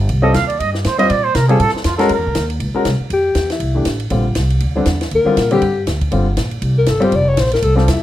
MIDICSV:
0, 0, Header, 1, 7, 480
1, 0, Start_track
1, 0, Key_signature, -1, "major"
1, 0, Tempo, 250941
1, 182, Time_signature, 4, 2, 24, 8
1, 15358, End_track
2, 0, Start_track
2, 0, Title_t, "Trumpet"
2, 0, Program_c, 0, 56
2, 430, Note_on_c, 0, 75, 99
2, 652, Note_on_c, 0, 77, 106
2, 681, Note_off_c, 0, 75, 0
2, 888, Note_off_c, 0, 77, 0
2, 899, Note_on_c, 0, 74, 94
2, 1121, Note_on_c, 0, 75, 108
2, 1150, Note_off_c, 0, 74, 0
2, 1375, Note_off_c, 0, 75, 0
2, 1387, Note_on_c, 0, 67, 56
2, 1647, Note_on_c, 0, 72, 88
2, 1676, Note_off_c, 0, 67, 0
2, 1869, Note_off_c, 0, 72, 0
2, 1880, Note_on_c, 0, 75, 107
2, 2110, Note_on_c, 0, 74, 97
2, 2139, Note_off_c, 0, 75, 0
2, 2367, Note_on_c, 0, 72, 97
2, 2395, Note_off_c, 0, 74, 0
2, 2584, Note_on_c, 0, 70, 89
2, 2613, Note_off_c, 0, 72, 0
2, 2819, Note_off_c, 0, 70, 0
2, 2830, Note_on_c, 0, 68, 91
2, 3057, Note_on_c, 0, 69, 110
2, 3086, Note_off_c, 0, 68, 0
2, 3312, Note_off_c, 0, 69, 0
2, 3323, Note_on_c, 0, 60, 47
2, 3529, Note_on_c, 0, 65, 91
2, 3557, Note_off_c, 0, 60, 0
2, 3759, Note_off_c, 0, 65, 0
2, 3770, Note_on_c, 0, 69, 89
2, 4006, Note_on_c, 0, 70, 87
2, 4035, Note_off_c, 0, 69, 0
2, 4769, Note_off_c, 0, 70, 0
2, 15358, End_track
3, 0, Start_track
3, 0, Title_t, "Alto saxophone"
3, 0, Program_c, 1, 65
3, 5992, Note_on_c, 1, 67, 84
3, 6671, Note_off_c, 1, 67, 0
3, 6737, Note_on_c, 1, 64, 61
3, 7351, Note_off_c, 1, 64, 0
3, 9852, Note_on_c, 1, 70, 92
3, 10525, Note_off_c, 1, 70, 0
3, 10574, Note_on_c, 1, 67, 79
3, 11192, Note_off_c, 1, 67, 0
3, 12975, Note_on_c, 1, 70, 80
3, 13198, Note_on_c, 1, 69, 79
3, 13227, Note_off_c, 1, 70, 0
3, 13464, Note_on_c, 1, 72, 86
3, 13492, Note_off_c, 1, 69, 0
3, 13684, Note_on_c, 1, 74, 87
3, 13712, Note_off_c, 1, 72, 0
3, 13929, Note_on_c, 1, 73, 87
3, 13958, Note_off_c, 1, 74, 0
3, 14156, Note_on_c, 1, 72, 89
3, 14184, Note_off_c, 1, 73, 0
3, 14399, Note_off_c, 1, 72, 0
3, 14411, Note_on_c, 1, 70, 83
3, 14604, Note_on_c, 1, 69, 89
3, 14633, Note_off_c, 1, 70, 0
3, 14848, Note_off_c, 1, 69, 0
3, 14859, Note_on_c, 1, 60, 45
3, 15089, Note_on_c, 1, 64, 75
3, 15118, Note_off_c, 1, 60, 0
3, 15352, Note_off_c, 1, 64, 0
3, 15358, End_track
4, 0, Start_track
4, 0, Title_t, "Grand piano"
4, 0, Program_c, 2, 0
4, 423, Note_on_c, 2, 55, 69
4, 430, Note_on_c, 2, 60, 77
4, 433, Note_on_c, 2, 65, 67
4, 452, Note_on_c, 2, 69, 85
4, 623, Note_off_c, 2, 55, 0
4, 626, Note_off_c, 2, 60, 0
4, 628, Note_off_c, 2, 65, 0
4, 637, Note_off_c, 2, 69, 0
4, 1881, Note_on_c, 2, 55, 76
4, 1888, Note_on_c, 2, 60, 71
4, 1898, Note_on_c, 2, 65, 67
4, 1903, Note_on_c, 2, 72, 85
4, 2071, Note_off_c, 2, 55, 0
4, 2074, Note_off_c, 2, 60, 0
4, 2079, Note_off_c, 2, 65, 0
4, 2082, Note_off_c, 2, 72, 0
4, 2853, Note_on_c, 2, 55, 76
4, 2862, Note_on_c, 2, 60, 69
4, 2870, Note_on_c, 2, 65, 70
4, 2882, Note_on_c, 2, 69, 88
4, 3036, Note_off_c, 2, 55, 0
4, 3040, Note_off_c, 2, 60, 0
4, 3044, Note_off_c, 2, 65, 0
4, 3050, Note_off_c, 2, 69, 0
4, 3797, Note_on_c, 2, 56, 95
4, 3804, Note_on_c, 2, 61, 78
4, 3811, Note_on_c, 2, 66, 83
4, 3827, Note_on_c, 2, 70, 99
4, 3987, Note_off_c, 2, 56, 0
4, 3991, Note_off_c, 2, 61, 0
4, 3995, Note_off_c, 2, 66, 0
4, 4002, Note_off_c, 2, 70, 0
4, 5251, Note_on_c, 2, 56, 72
4, 5268, Note_on_c, 2, 61, 61
4, 5272, Note_on_c, 2, 70, 82
4, 5279, Note_on_c, 2, 66, 67
4, 5434, Note_off_c, 2, 56, 0
4, 5442, Note_off_c, 2, 61, 0
4, 5444, Note_off_c, 2, 70, 0
4, 5448, Note_off_c, 2, 66, 0
4, 7165, Note_on_c, 2, 52, 55
4, 7171, Note_on_c, 2, 57, 47
4, 7191, Note_on_c, 2, 67, 59
4, 7192, Note_on_c, 2, 62, 58
4, 7351, Note_off_c, 2, 52, 0
4, 7354, Note_off_c, 2, 57, 0
4, 7364, Note_off_c, 2, 67, 0
4, 7365, Note_off_c, 2, 62, 0
4, 7844, Note_on_c, 2, 50, 55
4, 7857, Note_on_c, 2, 55, 50
4, 7868, Note_on_c, 2, 60, 51
4, 7874, Note_on_c, 2, 65, 59
4, 8101, Note_off_c, 2, 50, 0
4, 8108, Note_off_c, 2, 55, 0
4, 8113, Note_off_c, 2, 60, 0
4, 8116, Note_off_c, 2, 65, 0
4, 9094, Note_on_c, 2, 50, 62
4, 9100, Note_on_c, 2, 55, 59
4, 9107, Note_on_c, 2, 60, 61
4, 9114, Note_on_c, 2, 62, 75
4, 9277, Note_off_c, 2, 50, 0
4, 9280, Note_off_c, 2, 55, 0
4, 9284, Note_off_c, 2, 60, 0
4, 9287, Note_off_c, 2, 62, 0
4, 10034, Note_on_c, 2, 50, 66
4, 10057, Note_on_c, 2, 55, 65
4, 10057, Note_on_c, 2, 60, 68
4, 10072, Note_on_c, 2, 65, 86
4, 10228, Note_off_c, 2, 50, 0
4, 10239, Note_off_c, 2, 55, 0
4, 10239, Note_off_c, 2, 60, 0
4, 10247, Note_off_c, 2, 65, 0
4, 10538, Note_on_c, 2, 55, 72
4, 10539, Note_on_c, 2, 50, 84
4, 10547, Note_on_c, 2, 60, 71
4, 10566, Note_on_c, 2, 67, 94
4, 10720, Note_off_c, 2, 55, 0
4, 10721, Note_off_c, 2, 50, 0
4, 10725, Note_off_c, 2, 60, 0
4, 10734, Note_off_c, 2, 67, 0
4, 11694, Note_on_c, 2, 50, 60
4, 11700, Note_on_c, 2, 55, 55
4, 11713, Note_on_c, 2, 60, 58
4, 11720, Note_on_c, 2, 65, 64
4, 11949, Note_off_c, 2, 50, 0
4, 11952, Note_off_c, 2, 55, 0
4, 11959, Note_off_c, 2, 60, 0
4, 11962, Note_off_c, 2, 65, 0
4, 13394, Note_on_c, 2, 55, 80
4, 13398, Note_on_c, 2, 60, 76
4, 13412, Note_on_c, 2, 65, 69
4, 13412, Note_on_c, 2, 67, 84
4, 13590, Note_off_c, 2, 55, 0
4, 13592, Note_off_c, 2, 60, 0
4, 13599, Note_off_c, 2, 65, 0
4, 13599, Note_off_c, 2, 67, 0
4, 14835, Note_on_c, 2, 55, 65
4, 14848, Note_on_c, 2, 60, 70
4, 14858, Note_on_c, 2, 65, 63
4, 14873, Note_on_c, 2, 69, 75
4, 15031, Note_off_c, 2, 55, 0
4, 15037, Note_off_c, 2, 60, 0
4, 15043, Note_off_c, 2, 65, 0
4, 15050, Note_off_c, 2, 69, 0
4, 15358, End_track
5, 0, Start_track
5, 0, Title_t, "Upright bass"
5, 0, Program_c, 3, 32
5, 174, Note_on_c, 3, 36, 79
5, 643, Note_off_c, 3, 36, 0
5, 656, Note_on_c, 3, 39, 81
5, 1123, Note_off_c, 3, 39, 0
5, 1146, Note_on_c, 3, 43, 81
5, 1608, Note_off_c, 3, 43, 0
5, 1622, Note_on_c, 3, 41, 82
5, 2086, Note_off_c, 3, 41, 0
5, 2104, Note_on_c, 3, 46, 82
5, 2566, Note_off_c, 3, 46, 0
5, 2574, Note_on_c, 3, 48, 95
5, 3041, Note_off_c, 3, 48, 0
5, 3058, Note_on_c, 3, 45, 87
5, 3316, Note_off_c, 3, 45, 0
5, 3532, Note_on_c, 3, 41, 78
5, 3999, Note_off_c, 3, 41, 0
5, 4012, Note_on_c, 3, 42, 81
5, 4172, Note_off_c, 3, 42, 0
5, 4172, Note_on_c, 3, 40, 57
5, 4316, Note_off_c, 3, 40, 0
5, 4328, Note_on_c, 3, 37, 72
5, 4480, Note_off_c, 3, 37, 0
5, 4498, Note_on_c, 3, 39, 90
5, 4962, Note_off_c, 3, 39, 0
5, 4972, Note_on_c, 3, 37, 83
5, 5233, Note_off_c, 3, 37, 0
5, 5460, Note_on_c, 3, 36, 86
5, 5717, Note_off_c, 3, 36, 0
5, 5930, Note_on_c, 3, 41, 74
5, 6398, Note_off_c, 3, 41, 0
5, 6411, Note_on_c, 3, 40, 91
5, 6871, Note_off_c, 3, 40, 0
5, 6882, Note_on_c, 3, 36, 77
5, 7355, Note_off_c, 3, 36, 0
5, 7371, Note_on_c, 3, 33, 72
5, 7839, Note_off_c, 3, 33, 0
5, 7858, Note_on_c, 3, 34, 88
5, 8323, Note_off_c, 3, 34, 0
5, 8333, Note_on_c, 3, 36, 84
5, 8801, Note_off_c, 3, 36, 0
5, 8816, Note_on_c, 3, 38, 71
5, 9283, Note_off_c, 3, 38, 0
5, 9299, Note_on_c, 3, 40, 90
5, 9765, Note_off_c, 3, 40, 0
5, 9781, Note_on_c, 3, 39, 76
5, 10031, Note_off_c, 3, 39, 0
5, 10269, Note_on_c, 3, 46, 89
5, 10731, Note_off_c, 3, 46, 0
5, 10745, Note_on_c, 3, 43, 86
5, 11209, Note_off_c, 3, 43, 0
5, 11225, Note_on_c, 3, 38, 82
5, 11690, Note_off_c, 3, 38, 0
5, 11711, Note_on_c, 3, 31, 76
5, 12167, Note_off_c, 3, 31, 0
5, 12178, Note_on_c, 3, 34, 80
5, 12647, Note_off_c, 3, 34, 0
5, 12657, Note_on_c, 3, 36, 80
5, 13127, Note_off_c, 3, 36, 0
5, 13141, Note_on_c, 3, 31, 81
5, 13609, Note_off_c, 3, 31, 0
5, 13624, Note_on_c, 3, 29, 79
5, 14091, Note_off_c, 3, 29, 0
5, 14105, Note_on_c, 3, 34, 91
5, 14571, Note_off_c, 3, 34, 0
5, 14581, Note_on_c, 3, 36, 81
5, 15049, Note_off_c, 3, 36, 0
5, 15069, Note_on_c, 3, 40, 93
5, 15358, Note_off_c, 3, 40, 0
5, 15358, End_track
6, 0, Start_track
6, 0, Title_t, "Muted upright bass strokes"
6, 3325, Note_on_c, 9, 29, 37
6, 3517, Note_off_c, 9, 29, 0
6, 5259, Note_on_c, 9, 29, 42
6, 5450, Note_off_c, 9, 29, 0
6, 5727, Note_on_c, 9, 29, 47
6, 5918, Note_off_c, 9, 29, 0
6, 10043, Note_on_c, 9, 29, 42
6, 10234, Note_off_c, 9, 29, 0
6, 15358, End_track
7, 0, Start_track
7, 0, Title_t, "Drums"
7, 168, Note_on_c, 9, 51, 62
7, 181, Note_on_c, 9, 36, 22
7, 360, Note_off_c, 9, 51, 0
7, 373, Note_off_c, 9, 36, 0
7, 654, Note_on_c, 9, 44, 54
7, 654, Note_on_c, 9, 51, 65
7, 664, Note_on_c, 9, 36, 28
7, 664, Note_on_c, 9, 38, 72
7, 846, Note_off_c, 9, 44, 0
7, 846, Note_off_c, 9, 51, 0
7, 855, Note_off_c, 9, 36, 0
7, 855, Note_off_c, 9, 38, 0
7, 949, Note_on_c, 9, 51, 47
7, 1140, Note_off_c, 9, 51, 0
7, 1151, Note_on_c, 9, 36, 24
7, 1152, Note_on_c, 9, 51, 60
7, 1342, Note_off_c, 9, 36, 0
7, 1343, Note_off_c, 9, 51, 0
7, 1424, Note_on_c, 9, 38, 46
7, 1615, Note_on_c, 9, 44, 55
7, 1615, Note_on_c, 9, 51, 70
7, 1616, Note_off_c, 9, 38, 0
7, 1625, Note_on_c, 9, 36, 17
7, 1625, Note_on_c, 9, 38, 70
7, 1807, Note_off_c, 9, 44, 0
7, 1807, Note_off_c, 9, 51, 0
7, 1816, Note_off_c, 9, 38, 0
7, 1817, Note_off_c, 9, 36, 0
7, 1894, Note_on_c, 9, 51, 52
7, 2085, Note_off_c, 9, 51, 0
7, 2097, Note_on_c, 9, 51, 62
7, 2104, Note_on_c, 9, 36, 20
7, 2288, Note_off_c, 9, 51, 0
7, 2296, Note_off_c, 9, 36, 0
7, 2577, Note_on_c, 9, 44, 63
7, 2577, Note_on_c, 9, 51, 71
7, 2582, Note_on_c, 9, 36, 22
7, 2586, Note_on_c, 9, 38, 72
7, 2768, Note_off_c, 9, 44, 0
7, 2768, Note_off_c, 9, 51, 0
7, 2774, Note_off_c, 9, 36, 0
7, 2777, Note_off_c, 9, 38, 0
7, 2852, Note_on_c, 9, 51, 45
7, 3043, Note_off_c, 9, 51, 0
7, 3052, Note_on_c, 9, 51, 70
7, 3061, Note_on_c, 9, 36, 26
7, 3223, Note_on_c, 9, 38, 29
7, 3244, Note_off_c, 9, 51, 0
7, 3252, Note_off_c, 9, 36, 0
7, 3375, Note_off_c, 9, 38, 0
7, 3375, Note_on_c, 9, 38, 38
7, 3521, Note_on_c, 9, 44, 59
7, 3521, Note_on_c, 9, 51, 71
7, 3531, Note_off_c, 9, 38, 0
7, 3531, Note_on_c, 9, 38, 73
7, 3537, Note_on_c, 9, 36, 25
7, 3713, Note_off_c, 9, 44, 0
7, 3713, Note_off_c, 9, 51, 0
7, 3722, Note_off_c, 9, 38, 0
7, 3728, Note_off_c, 9, 36, 0
7, 3807, Note_on_c, 9, 51, 47
7, 3817, Note_on_c, 9, 38, 36
7, 3998, Note_off_c, 9, 51, 0
7, 4000, Note_on_c, 9, 51, 62
7, 4008, Note_off_c, 9, 38, 0
7, 4018, Note_on_c, 9, 36, 20
7, 4191, Note_off_c, 9, 51, 0
7, 4209, Note_off_c, 9, 36, 0
7, 4490, Note_on_c, 9, 44, 61
7, 4490, Note_on_c, 9, 51, 65
7, 4499, Note_on_c, 9, 38, 75
7, 4500, Note_on_c, 9, 36, 20
7, 4681, Note_off_c, 9, 44, 0
7, 4681, Note_off_c, 9, 51, 0
7, 4691, Note_off_c, 9, 36, 0
7, 4691, Note_off_c, 9, 38, 0
7, 4775, Note_on_c, 9, 51, 45
7, 4966, Note_off_c, 9, 51, 0
7, 4974, Note_on_c, 9, 51, 57
7, 4978, Note_on_c, 9, 36, 23
7, 5166, Note_off_c, 9, 51, 0
7, 5169, Note_off_c, 9, 36, 0
7, 5450, Note_on_c, 9, 44, 61
7, 5450, Note_on_c, 9, 51, 65
7, 5458, Note_on_c, 9, 36, 21
7, 5460, Note_on_c, 9, 38, 67
7, 5641, Note_off_c, 9, 44, 0
7, 5641, Note_off_c, 9, 51, 0
7, 5650, Note_off_c, 9, 36, 0
7, 5651, Note_off_c, 9, 38, 0
7, 5932, Note_on_c, 9, 51, 56
7, 5938, Note_on_c, 9, 36, 19
7, 6123, Note_off_c, 9, 51, 0
7, 6129, Note_off_c, 9, 36, 0
7, 6403, Note_on_c, 9, 44, 54
7, 6403, Note_on_c, 9, 51, 59
7, 6413, Note_on_c, 9, 38, 67
7, 6417, Note_on_c, 9, 36, 25
7, 6595, Note_off_c, 9, 44, 0
7, 6595, Note_off_c, 9, 51, 0
7, 6604, Note_off_c, 9, 38, 0
7, 6608, Note_off_c, 9, 36, 0
7, 6688, Note_on_c, 9, 51, 45
7, 6698, Note_on_c, 9, 38, 44
7, 6880, Note_off_c, 9, 51, 0
7, 6886, Note_on_c, 9, 51, 64
7, 6889, Note_off_c, 9, 38, 0
7, 6894, Note_on_c, 9, 36, 18
7, 7077, Note_off_c, 9, 51, 0
7, 7085, Note_off_c, 9, 36, 0
7, 7364, Note_on_c, 9, 44, 58
7, 7364, Note_on_c, 9, 51, 72
7, 7373, Note_on_c, 9, 38, 62
7, 7377, Note_on_c, 9, 36, 21
7, 7555, Note_off_c, 9, 44, 0
7, 7555, Note_off_c, 9, 51, 0
7, 7564, Note_off_c, 9, 38, 0
7, 7569, Note_off_c, 9, 36, 0
7, 7643, Note_on_c, 9, 51, 47
7, 7835, Note_off_c, 9, 51, 0
7, 7844, Note_on_c, 9, 51, 56
7, 7859, Note_on_c, 9, 36, 19
7, 8035, Note_off_c, 9, 51, 0
7, 8050, Note_off_c, 9, 36, 0
7, 8320, Note_on_c, 9, 44, 54
7, 8320, Note_on_c, 9, 51, 70
7, 8329, Note_on_c, 9, 38, 64
7, 8341, Note_on_c, 9, 36, 18
7, 8511, Note_off_c, 9, 44, 0
7, 8511, Note_off_c, 9, 51, 0
7, 8521, Note_off_c, 9, 38, 0
7, 8532, Note_off_c, 9, 36, 0
7, 8613, Note_on_c, 9, 51, 44
7, 8804, Note_off_c, 9, 51, 0
7, 8805, Note_on_c, 9, 51, 64
7, 8822, Note_on_c, 9, 36, 23
7, 8996, Note_off_c, 9, 51, 0
7, 9013, Note_off_c, 9, 36, 0
7, 9287, Note_on_c, 9, 44, 63
7, 9287, Note_on_c, 9, 51, 65
7, 9296, Note_on_c, 9, 38, 72
7, 9305, Note_on_c, 9, 36, 20
7, 9478, Note_off_c, 9, 44, 0
7, 9478, Note_off_c, 9, 51, 0
7, 9488, Note_off_c, 9, 38, 0
7, 9496, Note_off_c, 9, 36, 0
7, 9579, Note_on_c, 9, 51, 50
7, 9588, Note_on_c, 9, 38, 55
7, 9770, Note_off_c, 9, 51, 0
7, 9777, Note_on_c, 9, 51, 55
7, 9780, Note_off_c, 9, 38, 0
7, 9789, Note_on_c, 9, 36, 19
7, 9968, Note_off_c, 9, 51, 0
7, 9980, Note_off_c, 9, 36, 0
7, 10268, Note_on_c, 9, 44, 52
7, 10268, Note_on_c, 9, 51, 67
7, 10270, Note_on_c, 9, 36, 27
7, 10278, Note_on_c, 9, 38, 63
7, 10460, Note_off_c, 9, 44, 0
7, 10460, Note_off_c, 9, 51, 0
7, 10462, Note_off_c, 9, 36, 0
7, 10469, Note_off_c, 9, 38, 0
7, 10532, Note_on_c, 9, 51, 49
7, 10724, Note_off_c, 9, 51, 0
7, 10742, Note_on_c, 9, 51, 59
7, 10751, Note_on_c, 9, 36, 22
7, 10933, Note_off_c, 9, 51, 0
7, 10942, Note_off_c, 9, 36, 0
7, 11224, Note_on_c, 9, 44, 63
7, 11224, Note_on_c, 9, 51, 61
7, 11229, Note_on_c, 9, 36, 20
7, 11233, Note_on_c, 9, 38, 68
7, 11415, Note_off_c, 9, 44, 0
7, 11415, Note_off_c, 9, 51, 0
7, 11420, Note_off_c, 9, 36, 0
7, 11425, Note_off_c, 9, 38, 0
7, 11500, Note_on_c, 9, 51, 48
7, 11508, Note_on_c, 9, 36, 52
7, 11691, Note_off_c, 9, 51, 0
7, 11697, Note_on_c, 9, 51, 57
7, 11699, Note_off_c, 9, 36, 0
7, 11710, Note_on_c, 9, 36, 24
7, 11888, Note_off_c, 9, 51, 0
7, 11901, Note_off_c, 9, 36, 0
7, 12179, Note_on_c, 9, 44, 53
7, 12179, Note_on_c, 9, 51, 63
7, 12185, Note_on_c, 9, 36, 26
7, 12188, Note_on_c, 9, 38, 69
7, 12370, Note_off_c, 9, 44, 0
7, 12370, Note_off_c, 9, 51, 0
7, 12377, Note_off_c, 9, 36, 0
7, 12379, Note_off_c, 9, 38, 0
7, 12454, Note_on_c, 9, 51, 42
7, 12645, Note_off_c, 9, 51, 0
7, 12658, Note_on_c, 9, 51, 61
7, 12666, Note_on_c, 9, 36, 23
7, 12849, Note_off_c, 9, 51, 0
7, 12857, Note_off_c, 9, 36, 0
7, 13128, Note_on_c, 9, 44, 59
7, 13128, Note_on_c, 9, 51, 74
7, 13138, Note_on_c, 9, 38, 72
7, 13144, Note_on_c, 9, 36, 25
7, 13320, Note_off_c, 9, 44, 0
7, 13320, Note_off_c, 9, 51, 0
7, 13329, Note_off_c, 9, 38, 0
7, 13335, Note_off_c, 9, 36, 0
7, 13419, Note_on_c, 9, 51, 45
7, 13610, Note_off_c, 9, 51, 0
7, 13616, Note_on_c, 9, 51, 55
7, 13626, Note_on_c, 9, 36, 20
7, 13808, Note_off_c, 9, 51, 0
7, 13818, Note_off_c, 9, 36, 0
7, 14097, Note_on_c, 9, 44, 50
7, 14097, Note_on_c, 9, 51, 70
7, 14105, Note_on_c, 9, 36, 18
7, 14106, Note_on_c, 9, 38, 69
7, 14267, Note_off_c, 9, 38, 0
7, 14267, Note_on_c, 9, 38, 30
7, 14288, Note_off_c, 9, 44, 0
7, 14288, Note_off_c, 9, 51, 0
7, 14296, Note_off_c, 9, 36, 0
7, 14374, Note_on_c, 9, 51, 49
7, 14435, Note_off_c, 9, 38, 0
7, 14435, Note_on_c, 9, 38, 45
7, 14565, Note_off_c, 9, 51, 0
7, 14583, Note_on_c, 9, 51, 71
7, 14589, Note_on_c, 9, 36, 24
7, 14627, Note_off_c, 9, 38, 0
7, 14774, Note_off_c, 9, 51, 0
7, 14781, Note_off_c, 9, 36, 0
7, 14877, Note_on_c, 9, 38, 31
7, 15068, Note_off_c, 9, 38, 0
7, 15071, Note_on_c, 9, 44, 54
7, 15071, Note_on_c, 9, 51, 71
7, 15075, Note_on_c, 9, 36, 22
7, 15081, Note_on_c, 9, 38, 71
7, 15263, Note_off_c, 9, 44, 0
7, 15263, Note_off_c, 9, 51, 0
7, 15266, Note_off_c, 9, 36, 0
7, 15272, Note_off_c, 9, 38, 0
7, 15358, End_track
0, 0, End_of_file